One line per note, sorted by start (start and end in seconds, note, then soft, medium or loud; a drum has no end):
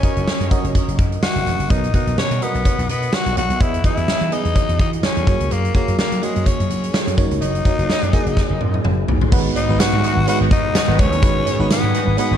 0.00 0.03 C#4 medium
0.00 0.99 C#4 medium
0.00 0.38 C#4 medium
0.00 0.04 F#4 medium
0.00 0.38 F#4 medium
0.00 0.04 A#4 medium
0.00 0.04 D#5 medium
0.00 kick medium
0.00 closed hi-hat medium
0.04 0.38 A#4 medium
0.04 0.39 D#5 medium
0.16 0.25 F#1 medium
0.16 closed hi-hat soft
0.27 muted slap bass stroke soft
0.27 snare medium
0.40 0.48 F#2 medium
0.40 closed hi-hat soft
0.51 1.19 C#4 medium
0.51 1.19 F#4 medium
0.51 1.19 A#4 medium
0.51 1.19 D#5 loud
0.51 kick medium
0.51 closed hi-hat medium
0.64 0.72 F#1 medium
0.64 closed hi-hat soft
0.75 kick medium
0.75 closed hi-hat medium
0.88 0.96 F#1 medium
0.88 closed hi-hat soft
0.99 1.17 F#2 medium
0.99 kick medium
0.99 closed hi-hat medium
1.12 closed hi-hat soft
1.23 1.72 F#4 loud
1.23 snare loud
1.36 1.44 F#1 medium
1.36 closed hi-hat soft
1.46 1.56 E1 medium
1.46 closed hi-hat medium
1.59 1.67 F#1 medium
1.59 closed hi-hat soft
1.70 1.88 B1 loud
1.70 2.38 B2 medium
1.70 1.87 B3 medium
1.70 1.94 D#4 medium
1.70 1.88 F#4 medium
1.70 1.88 A#4 medium
1.70 1.88 D#5 medium
1.70 kick loud
1.70 closed hi-hat medium
1.70 cowbell medium
1.84 closed hi-hat soft
1.94 2.29 B3 medium
1.94 2.17 D#4 medium
1.94 2.29 F#4 medium
1.94 2.29 A#4 medium
1.94 2.29 F#5 medium
1.94 kick medium
1.94 closed hi-hat medium
2.07 2.15 B1 medium
2.07 closed hi-hat medium
2.18 2.44 C#4 medium
2.18 muted slap bass stroke soft
2.18 snare loud
2.18 cowbell medium
2.31 2.39 B2 medium
2.31 closed hi-hat soft
2.41 3.09 B3 medium
2.41 2.90 B3 medium
2.41 3.09 F#4 medium
2.41 3.10 A#4 medium
2.41 3.10 D#5 medium
2.41 closed hi-hat medium
2.55 2.63 B1 medium
2.55 closed hi-hat soft
2.65 kick medium
2.65 closed hi-hat medium
2.65 cowbell medium
2.78 2.86 B1 medium
2.78 closed hi-hat medium
2.89 3.07 B2 medium
2.89 3.16 B3 medium
2.89 closed hi-hat medium
3.02 closed hi-hat soft
3.13 3.38 F#4 medium
3.13 snare loud
3.13 cowbell medium
3.26 3.34 B1 medium
3.26 closed hi-hat soft
3.37 3.47 A#1 medium
3.37 3.63 F#4 loud
3.37 closed hi-hat medium
3.37 cowbell medium
3.50 3.58 B1 medium
3.50 closed hi-hat soft
3.60 3.78 E2 medium
3.60 4.28 E3 medium
3.60 3.78 B3 medium
3.60 3.78 E4 medium
3.60 3.85 E4 loud
3.60 3.78 G#4 medium
3.60 3.78 D#5 medium
3.60 kick loud
3.60 closed hi-hat medium
3.60 cowbell medium
3.74 closed hi-hat soft
3.84 4.19 B3 medium
3.84 4.19 E4 medium
3.84 4.35 E4 loud
3.84 3.91 F#4 medium
3.84 4.19 D#5 medium
3.84 kick medium
3.84 closed hi-hat medium
3.90 4.22 G#4 medium
3.97 4.05 E2 loud
3.97 closed hi-hat soft
4.08 muted slap bass stroke soft
4.08 snare medium
4.08 cowbell medium
4.21 4.29 E3 medium
4.21 closed hi-hat soft
4.32 5.00 E3 medium
4.32 5.00 B3 medium
4.32 4.80 D#4 medium
4.32 5.00 G#4 medium
4.32 5.00 D#5 medium
4.32 closed hi-hat medium
4.45 4.53 E2 medium
4.45 closed hi-hat soft
4.56 kick medium
4.56 closed hi-hat medium
4.56 cowbell medium
4.69 4.77 E2 loud
4.69 closed hi-hat soft
4.79 4.97 E3 medium
4.79 4.91 D#4 medium
4.79 kick loud
4.79 closed hi-hat medium
4.93 closed hi-hat soft
5.03 5.54 C#4 medium
5.03 snare loud
5.03 cowbell medium
5.17 5.25 E2 medium
5.17 closed hi-hat soft
5.26 5.37 F#2 medium
5.26 5.66 A#3 medium
5.26 5.66 F#4 medium
5.26 5.66 G#4 medium
5.26 5.67 C#5 medium
5.26 kick loud
5.26 closed hi-hat medium
5.26 cowbell medium
5.40 5.48 C#2 medium
5.40 closed hi-hat medium
5.51 5.69 F#2 loud
5.51 5.75 A#3 medium
5.51 closed hi-hat medium
5.51 cowbell medium
5.65 closed hi-hat soft
5.74 6.09 A#3 medium
5.74 5.98 A#3 medium
5.74 6.09 F#4 medium
5.74 6.10 G#4 medium
5.74 6.10 C#5 medium
5.74 kick medium
5.74 closed hi-hat medium
5.88 5.96 F#2 medium
5.88 closed hi-hat medium
5.99 6.25 A#3 medium
5.99 muted slap bass stroke soft
5.99 snare loud
5.99 cowbell medium
6.12 6.20 F#3 medium
6.12 closed hi-hat medium
6.22 6.49 G#3 medium
6.22 6.90 A#3 medium
6.22 6.90 F#4 medium
6.22 6.90 G#4 medium
6.22 6.91 C#5 medium
6.22 closed hi-hat medium
6.36 6.44 F#2 medium
6.36 closed hi-hat soft
6.46 7.18 C#4 medium
6.46 kick medium
6.46 closed hi-hat medium
6.46 cowbell medium
6.60 6.68 F#2 medium
6.60 closed hi-hat soft
6.70 6.88 F#3 medium
6.70 closed hi-hat medium
6.84 closed hi-hat soft
6.94 snare loud
6.94 cowbell medium
7.07 7.15 F#2 medium
7.07 closed hi-hat medium
7.17 7.28 F#2 medium
7.17 7.57 A#3 medium
7.17 7.57 D#4 medium
7.17 7.57 F#4 medium
7.17 7.57 C#5 loud
7.17 kick loud
7.17 closed hi-hat medium
7.17 cowbell medium
7.31 7.39 C#2 medium
7.31 closed hi-hat medium
7.42 7.60 F#1 loud
7.42 8.81 D#4 loud
7.42 closed hi-hat medium
7.42 cowbell medium
7.55 closed hi-hat medium
7.65 8.00 A#3 medium
7.65 8.00 D#4 medium
7.65 8.00 F#4 medium
7.65 8.00 A#4 medium
7.65 kick medium
7.65 closed hi-hat medium
7.65 cowbell medium
7.78 7.87 F#1 medium
7.78 closed hi-hat medium
7.89 muted slap bass stroke soft
7.89 snare medium
7.89 cowbell medium
8.03 8.10 F#2 medium
8.03 closed hi-hat medium
8.13 8.81 A#3 medium
8.13 8.81 D#4 medium
8.13 8.81 F#4 medium
8.13 8.81 G#4 loud
8.13 kick medium
8.13 closed hi-hat medium
8.26 8.34 F#1 medium
8.26 closed hi-hat soft
8.37 kick medium
8.37 snare soft
8.37 cowbell medium
8.50 8.58 F#1 medium
8.61 8.79 F#2 medium
8.61 high tom medium
8.74 high tom medium
8.84 9.02 F#1 medium
8.84 mid tom medium
8.84 cowbell medium
9.08 9.18 D#2 medium
9.08 floor tom medium
9.21 floor tom medium
9.32 9.50 G#1 loud
9.32 10.00 G#2 medium
9.32 12.37 D#3 medium
9.32 12.37 G#3 medium
9.32 9.57 G#3 medium
9.32 12.37 B3 medium
9.32 9.57 B3 medium
9.32 9.58 D#4 medium
9.32 11.21 F#4 medium
9.32 9.58 F#4 medium
9.32 9.58 B4 loud
9.32 kick loud
9.32 crash loud
9.32 cowbell medium
9.56 9.82 D#4 loud
9.56 closed hi-hat medium
9.56 cowbell medium
9.69 9.77 G#1 loud
9.69 10.10 G#3 medium
9.69 10.10 B3 medium
9.69 10.11 D#4 medium
9.69 10.11 F#4 medium
9.69 10.11 B4 medium
9.80 10.28 F#4 loud
9.80 muted slap bass stroke soft
9.80 snare loud
9.80 closed hi-hat medium
9.80 tambourine medium
9.80 cowbell medium
9.93 10.01 G#2 medium
10.04 10.15 D#3 medium
10.04 10.15 B3 medium
10.04 10.15 F#4 medium
10.04 closed hi-hat medium
10.17 10.25 G#1 medium
10.27 10.95 G#3 medium
10.27 10.95 B3 medium
10.27 10.95 D#4 medium
10.27 10.95 F#4 medium
10.27 10.39 F#4 loud
10.27 10.96 B4 medium
10.27 closed hi-hat medium
10.27 cowbell medium
10.41 10.49 G#1 loud
10.41 10.50 D#3 medium
10.41 10.50 B3 medium
10.41 10.50 F#4 medium
10.51 10.69 G#2 medium
10.51 11.02 D#4 loud
10.51 kick loud
10.51 closed hi-hat medium
10.75 10.86 D#3 medium
10.75 10.86 B3 medium
10.75 10.86 F#4 medium
10.75 snare loud
10.75 closed hi-hat medium
10.75 tambourine medium
10.75 cowbell medium
10.88 10.96 G#1 medium
10.88 11.17 D#3 loud
10.88 11.17 B3 medium
10.88 11.17 F#4 loud
10.99 11.09 C#2 medium
10.99 11.71 C#4 loud
10.99 kick loud
10.99 closed hi-hat medium
10.99 cowbell medium
11.12 11.20 D#2 medium
11.12 closed hi-hat medium
11.22 11.40 G#1 loud
11.22 11.90 G#2 medium
11.22 11.48 G#3 medium
11.22 11.48 B3 medium
11.22 11.48 D#4 medium
11.22 11.48 F#4 medium
11.22 12.37 G#4 medium
11.22 11.48 B4 medium
11.22 kick loud
11.22 closed hi-hat medium
11.22 cowbell medium
11.46 closed hi-hat medium
11.46 cowbell medium
11.59 11.67 G#1 loud
11.59 12.01 G#3 medium
11.59 12.01 B3 medium
11.59 12.01 D#4 medium
11.59 12.01 F#4 medium
11.59 12.01 B4 medium
11.70 12.15 B3 medium
11.70 muted slap bass stroke soft
11.70 snare loud
11.70 closed hi-hat medium
11.70 tambourine medium
11.70 cowbell medium
11.83 11.91 G#2 medium
11.94 12.05 D#3 medium
11.94 12.05 B3 medium
11.94 12.05 F#4 medium
11.94 closed hi-hat medium
12.07 12.15 G#1 medium
12.17 12.37 G#3 medium
12.17 12.37 B3 medium
12.17 12.37 D#4 medium
12.17 12.37 F#4 medium
12.17 12.37 B4 medium
12.17 closed hi-hat medium
12.17 cowbell medium
12.31 12.37 G#1 medium
12.31 12.37 D#3 medium
12.31 12.37 B3 medium
12.31 12.37 F#4 medium